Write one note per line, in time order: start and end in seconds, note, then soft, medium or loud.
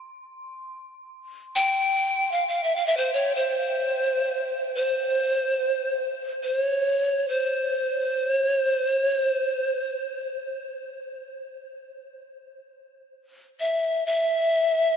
0.00 5.34 C6 soft
1.56 2.33 G5 medium
2.32 2.47 F5 medium
2.48 2.65 F5 medium
2.63 2.77 E5 medium
2.76 2.88 F5 medium
2.86 2.99 E5 medium
2.97 3.15 C5 medium
3.13 3.37 C#5 medium
3.35 4.74 C5 medium
4.75 6.11 C5 medium
6.43 6.60 C5 medium
6.60 7.30 C#5 medium
7.28 8.37 C5 medium
8.37 8.60 C#5 medium
8.60 8.97 C5 medium
8.97 9.20 C#5 medium
9.20 10.28 C5 medium
13.60 14.06 E5 medium
14.06 14.97 E5 medium